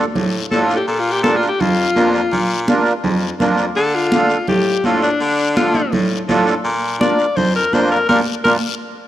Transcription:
0.15 0.44 A2 medium
0.15 high conga soft
0.15 low conga medium
0.15 long guiro medium
0.51 0.80 A2 medium
0.51 0.77 D4 medium
0.51 0.77 F4 medium
0.51 0.65 A4 medium
0.51 0.77 A4 medium
0.51 high conga medium
0.51 short guiro medium
0.64 0.76 F4 medium
0.69 short guiro medium
0.77 0.88 G4 medium
0.87 1.45 A#2 loud
0.87 1.01 A4 medium
0.87 high conga soft
0.87 long guiro medium
1.00 1.13 F4 medium
1.12 1.23 G4 medium
1.23 1.49 D4 medium
1.23 1.49 F4 medium
1.23 1.38 A4 medium
1.23 1.49 A#4 medium
1.23 high conga medium
1.23 short guiro medium
1.37 1.48 F4 medium
1.42 short guiro medium
1.48 1.62 G4 medium
1.59 1.89 F2 medium
1.59 2.65 F4 loud
1.59 high conga soft
1.59 low conga medium
1.59 long guiro medium
1.96 2.25 F2 medium
1.96 2.21 D4 medium
1.96 2.21 F4 medium
1.96 2.22 A#4 medium
1.96 high conga medium
1.96 short guiro medium
2.14 short guiro medium
2.31 2.68 A#2 loud
2.31 high conga soft
2.31 low conga medium
2.31 long guiro medium
2.68 2.93 D4 medium
2.68 2.93 F4 medium
2.68 2.94 A#4 medium
2.68 high conga loud
2.68 short guiro medium
2.85 short guiro medium
3.03 3.33 F2 medium
3.03 high conga soft
3.03 low conga medium
3.03 long guiro medium
3.40 3.69 F2 medium
3.40 3.65 D4 medium
3.40 3.66 F4 medium
3.40 3.66 A#4 medium
3.40 high conga medium
3.40 low conga medium
3.40 short guiro medium
3.57 short guiro medium
3.75 4.34 D3 loud
3.75 3.96 A4 loud
3.75 high conga soft
3.75 long guiro medium
3.95 4.47 F4 medium
4.12 4.38 D4 medium
4.12 4.38 F4 medium
4.12 4.38 A4 medium
4.12 high conga loud
4.12 short guiro medium
4.29 short guiro medium
4.47 4.77 A2 medium
4.47 4.87 G4 medium
4.47 high conga soft
4.47 low conga medium
4.47 long guiro medium
4.84 5.13 A2 medium
4.84 5.09 D4 medium
4.84 5.10 F4 medium
4.84 5.03 F4 medium
4.84 5.10 A4 medium
4.84 high conga medium
4.84 short guiro medium
5.02 5.55 D4 medium
5.02 short guiro medium
5.20 5.78 D3 loud
5.20 high conga soft
5.20 long guiro medium
5.56 5.82 D4 medium
5.56 5.82 F4 medium
5.56 5.92 F4 medium
5.56 5.82 A4 medium
5.56 high conga loud
5.56 short guiro medium
5.74 high conga medium
5.74 short guiro medium
5.92 6.21 A2 medium
5.92 high conga soft
5.92 low conga medium
5.92 long guiro medium
6.28 6.57 A2 loud
6.28 6.54 D4 medium
6.28 6.54 F4 medium
6.28 6.54 A4 loud
6.28 high conga medium
6.28 low conga medium
6.28 short guiro medium
6.47 short guiro medium
6.64 7.00 A#2 loud
6.64 high conga soft
6.64 long guiro medium
7.00 7.26 D4 medium
7.00 7.26 F4 medium
7.00 7.26 A#4 medium
7.00 7.38 D5 loud
7.00 high conga loud
7.00 short guiro medium
7.19 short guiro medium
7.36 7.66 F2 medium
7.36 7.54 C5 medium
7.36 high conga soft
7.36 low conga medium
7.36 long guiro medium
7.56 7.75 A#4 medium
7.73 8.02 F2 medium
7.73 7.98 D4 medium
7.73 7.98 F4 medium
7.73 7.98 A#4 medium
7.73 7.91 C5 medium
7.73 high conga medium
7.73 short guiro medium
7.91 8.08 A#4 medium
7.91 short guiro medium
8.08 8.22 A#2 loud
8.08 8.21 D4 medium
8.08 8.21 F4 medium
8.08 8.20 A#4 medium
8.08 8.18 A#4 medium
8.08 high conga medium
8.08 long guiro loud
8.44 8.58 A#2 loud
8.44 8.56 D4 medium
8.44 8.56 F4 medium
8.44 8.53 A#4 loud
8.44 8.56 A#4 medium
8.44 high conga loud
8.44 long guiro loud

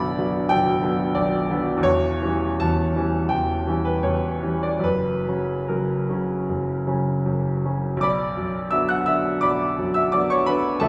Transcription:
0.00 0.50 B0 medium
0.00 0.50 B1 medium
0.00 0.17 D3 soft
0.00 0.18 F#3 soft
0.00 0.18 B3 soft
0.00 1.15 D5 medium
0.00 0.50 B5 medium
0.17 0.47 D3 soft
0.17 0.48 F#3 soft
0.17 0.48 B3 soft
0.49 0.83 B0 soft
0.49 0.83 B1 soft
0.49 1.16 G5 medium
0.83 1.13 D3 soft
0.83 1.13 F#3 soft
0.83 1.14 B3 soft
1.15 1.49 B0 soft
1.15 1.48 B1 soft
1.15 1.83 D5 medium
1.50 1.81 D3 soft
1.50 1.81 F#3 soft
1.50 1.82 B3 soft
1.77 2.18 E2 medium
1.83 2.21 E1 medium
1.83 2.60 C#5 medium
2.22 2.57 E3 soft
2.22 2.57 G3 soft
2.22 2.58 C#4 soft
2.60 2.95 E1 soft
2.60 2.95 E2 soft
2.60 3.30 A5 medium
2.96 3.27 E3 soft
2.96 3.27 G3 soft
2.96 3.27 C#4 soft
3.29 3.65 E1 soft
3.29 3.65 E2 soft
3.29 3.84 G5 medium
3.67 4.00 E3 soft
3.67 4.00 G3 soft
3.67 4.01 C#4 soft
3.85 4.03 B4 medium
4.03 4.41 E1 soft
4.03 4.41 E2 soft
4.03 4.62 C#5 medium
4.42 4.80 E3 soft
4.42 4.80 G3 soft
4.42 4.80 C#4 soft
4.63 4.84 D5 medium
4.80 5.23 F#2 soft
4.84 5.26 F#1 soft
4.84 5.69 B4 medium
5.28 5.65 C#3 soft
5.28 5.65 F#3 soft
5.28 5.65 C#4 soft
5.68 6.08 F#1 soft
5.68 6.08 F#2 soft
5.68 7.64 A#4 soft
6.09 6.44 C#3 soft
6.09 6.45 F#3 soft
6.09 6.45 C#4 soft
6.49 6.86 F#1 soft
6.49 6.86 F#2 soft
6.87 7.22 C#3 soft
6.87 7.22 F#3 soft
6.87 7.22 C#4 soft
7.26 7.63 F#1 soft
7.26 7.63 F#2 soft
7.65 7.98 C#3 soft
7.65 7.98 F#3 soft
7.65 7.99 C#4 soft
7.97 9.35 B1 soft
8.01 8.68 D5 medium
8.01 8.68 B5 medium
8.01 8.71 D6 medium
8.37 8.93 F#2 soft
8.71 9.03 D3 soft
8.71 9.03 F#3 soft
8.71 9.04 B3 soft
8.71 8.88 E5 medium
8.71 8.88 E6 medium
8.89 9.06 F#5 medium
8.89 9.06 F#6 medium
9.06 9.63 D3 soft
9.06 9.40 E5 medium
9.06 9.42 E6 medium
9.41 10.76 B1 soft
9.41 9.91 D5 medium
9.41 9.91 B5 soft
9.41 9.94 D6 medium
9.79 10.33 F#2 soft
9.94 10.11 E5 medium
9.94 10.11 E6 medium
10.12 10.43 D3 soft
10.12 10.44 F#3 soft
10.12 10.44 B3 soft
10.12 10.28 D5 medium
10.12 10.29 D6 medium
10.30 10.46 C#5 medium
10.30 10.46 C#6 medium
10.46 10.80 D3 soft
10.46 10.78 B4 medium
10.46 10.80 B5 medium
10.80 10.88 C#2 medium
10.80 10.88 A4 medium
10.80 10.88 E5 medium
10.80 10.88 A5 medium

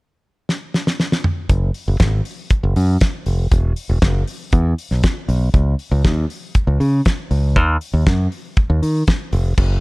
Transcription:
0.49 snare medium
0.74 snare medium
0.87 snare medium
1.00 snare medium
1.12 snare medium
1.24 mid tom medium
1.49 1.70 F#1 medium
1.49 kick loud
1.49 closed hi-hat medium
1.74 open hi-hat medium
1.88 1.98 F#1 medium
2.00 2.20 G#1 medium
2.00 kick loud
2.00 snare loud
2.00 closed hi-hat medium
2.25 open hi-hat medium
2.50 kick loud
2.50 closed hi-hat medium
2.63 2.73 F#1 medium
2.76 2.96 F#2 medium
2.76 open hi-hat medium
3.01 kick loud
3.01 snare loud
3.01 closed hi-hat medium
3.26 3.46 F1 medium
3.26 open hi-hat medium
3.51 3.72 E1 loud
3.51 kick medium
3.51 closed hi-hat medium
3.76 open hi-hat medium
3.89 4.00 E1 medium
4.02 4.22 F#1 medium
4.02 kick loud
4.02 snare loud
4.02 closed hi-hat medium
4.27 open hi-hat medium
4.52 4.73 E2 loud
4.52 kick loud
4.52 closed hi-hat medium
4.78 open hi-hat medium
4.91 5.01 B1 medium
4.91 snare soft
5.03 kick loud
5.03 snare loud
5.03 closed hi-hat medium
5.28 5.49 B1 medium
5.28 open hi-hat medium
5.54 5.74 C#2 loud
5.54 kick loud
5.54 closed hi-hat medium
5.79 open hi-hat medium
5.91 6.02 C#2 loud
6.05 6.25 D#2 medium
6.05 kick loud
6.05 snare loud
6.05 closed hi-hat medium
6.30 open hi-hat medium
6.55 kick loud
6.55 closed hi-hat medium
6.67 6.77 C#2 medium
6.80 7.00 C#3 medium
6.80 open hi-hat medium
7.05 kick medium
7.05 snare loud
7.05 closed hi-hat medium
7.31 7.56 C#2 medium
7.31 open hi-hat medium
7.56 7.76 D#2 medium
7.56 kick loud
7.56 closed hi-hat medium
7.81 open hi-hat medium
7.93 8.04 D#2 medium
8.07 8.27 F#2 medium
8.07 kick loud
8.07 snare loud
8.07 closed hi-hat medium
8.32 open hi-hat medium
8.57 kick loud
8.57 closed hi-hat medium
8.70 8.80 D#2 loud
8.82 9.02 D#3 medium
8.82 open hi-hat medium
9.07 kick loud
9.07 snare loud
9.07 closed hi-hat medium
9.33 9.53 F1 medium
9.33 open hi-hat medium
9.58 9.78 F#1 loud
9.58 kick loud
9.58 crash medium

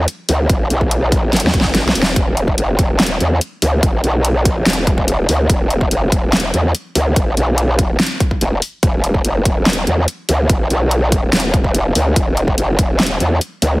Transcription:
0.08 closed hi-hat medium
0.29 0.48 D2 loud
0.29 open hi-hat loud
0.49 0.69 G1 loud
0.49 kick loud
0.49 closed hi-hat medium
0.70 1.13 B1 loud
0.70 closed hi-hat medium
0.81 kick medium
0.91 closed hi-hat medium
1.12 1.31 A#1 loud
1.12 kick loud
1.12 open hi-hat medium
1.33 1.42 G1 loud
1.33 snare medium
1.33 closed hi-hat soft
1.37 closed hi-hat medium
1.40 1.52 E2 loud
1.40 closed hi-hat medium
1.47 snare medium
1.54 1.84 G1 loud
1.54 kick loud
1.54 closed hi-hat medium
1.61 kick medium
1.61 snare medium
1.75 snare medium
1.75 closed hi-hat medium
1.85 1.94 B1 medium
1.85 snare loud
1.95 2.15 E1 loud
1.95 open hi-hat loud
2.02 snare loud
2.02 closed hi-hat soft
2.16 2.56 E1 loud
2.16 kick loud
2.16 closed hi-hat medium
2.37 closed hi-hat medium
2.48 kick medium
2.58 2.77 F#1 loud
2.58 closed hi-hat medium
2.79 3.19 E1 medium
2.79 kick loud
2.79 closed hi-hat medium
3.00 snare loud
3.00 closed hi-hat medium
3.03 closed hi-hat medium
3.07 closed hi-hat medium
3.20 3.40 E2 loud
3.20 closed hi-hat medium
3.41 closed hi-hat medium
3.62 3.81 D2 loud
3.62 open hi-hat loud
3.83 4.02 G1 loud
3.83 kick loud
3.83 closed hi-hat medium
4.04 4.47 B1 loud
4.04 closed hi-hat medium
4.25 closed hi-hat medium
4.45 4.65 A#1 loud
4.45 kick loud
4.45 closed hi-hat medium
4.66 5.27 E1 loud
4.66 snare loud
4.66 closed hi-hat medium
4.70 closed hi-hat medium
4.73 closed hi-hat medium
4.87 kick loud
4.87 closed hi-hat medium
4.98 kick medium
5.08 closed hi-hat medium
5.29 5.48 D2 loud
5.29 open hi-hat medium
5.50 5.90 E1 loud
5.50 kick loud
5.50 closed hi-hat medium
5.70 closed hi-hat medium
5.81 kick medium
5.91 6.10 F#1 loud
5.91 closed hi-hat medium
6.12 6.52 E1 loud
6.12 kick loud
6.12 closed hi-hat medium
6.33 snare loud
6.33 closed hi-hat soft
6.37 closed hi-hat medium
6.40 closed hi-hat medium
6.54 6.73 E2 loud
6.54 closed hi-hat medium
6.75 closed hi-hat medium
6.95 7.15 D2 loud
6.95 open hi-hat medium
7.16 7.35 G1 loud
7.16 kick loud
7.16 closed hi-hat medium
7.37 7.98 B1 loud
7.37 closed hi-hat medium
7.58 closed hi-hat medium
7.79 kick loud
7.79 closed hi-hat medium
8.00 snare loud
8.00 closed hi-hat soft
8.03 closed hi-hat medium
8.07 closed hi-hat medium
8.20 kick loud
8.20 closed hi-hat medium
8.31 kick medium
8.41 8.60 E1 loud
8.41 closed hi-hat medium
8.62 open hi-hat medium
8.83 9.23 E1 loud
8.83 kick loud
8.83 closed hi-hat medium
9.04 closed hi-hat medium
9.14 kick medium
9.25 9.44 F#1 medium
9.25 closed hi-hat medium
9.45 9.85 E1 medium
9.45 kick loud
9.45 closed hi-hat medium
9.66 snare loud
9.66 closed hi-hat soft
9.70 closed hi-hat medium
9.73 closed hi-hat medium
9.87 10.06 E2 loud
9.87 closed hi-hat soft
10.08 closed hi-hat medium
10.29 10.48 D2 loud
10.29 open hi-hat medium
10.50 10.69 G1 loud
10.50 kick loud
10.50 closed hi-hat medium
10.70 11.31 B1 loud
10.70 closed hi-hat medium
10.91 closed hi-hat medium
11.12 kick loud
11.12 closed hi-hat medium
11.33 11.94 E1 loud
11.33 snare loud
11.33 closed hi-hat soft
11.36 closed hi-hat medium
11.40 closed hi-hat medium
11.54 kick loud
11.54 closed hi-hat soft
11.64 kick medium
11.75 closed hi-hat medium
11.95 12.15 D2 loud
11.95 open hi-hat medium
12.16 12.56 E1 medium
12.16 kick loud
12.16 closed hi-hat medium
12.37 closed hi-hat medium
12.48 kick medium
12.58 12.77 F#1 loud
12.58 closed hi-hat medium
12.79 13.19 E1 loud
12.79 kick loud
12.79 closed hi-hat medium
13.00 snare loud
13.00 closed hi-hat soft
13.03 closed hi-hat medium
13.07 closed hi-hat medium
13.20 13.40 E2 loud
13.20 closed hi-hat medium
13.41 closed hi-hat medium
13.62 13.80 D2 loud
13.62 open hi-hat loud

